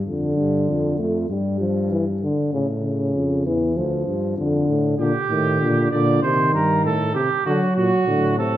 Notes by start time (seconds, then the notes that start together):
0.06 F2 D3
0.37 G2
0.69 F2
0.99 F2 A3
1.30 G2 G3
1.60 F3
1.91 E3
2.22 D3
2.53 A2 C#3
2.84 C#3
3.15 F2
3.46 E2 E3
3.76 D2 F3
4.07 G2
4.38 F2 D3
4.68 A2
4.99 A#2 D3 G4
5.29 A2 D#3
5.61 A#2 D3
5.91 A#2 D3 D5
6.22 C3 D#3 C5
6.53 G2 A#4
6.84 A2 A4
7.14 C3 G4
7.45 D3 F#3 F#4
7.76 A#2 F#4
8.07 A2 D3
8.38 C3 A4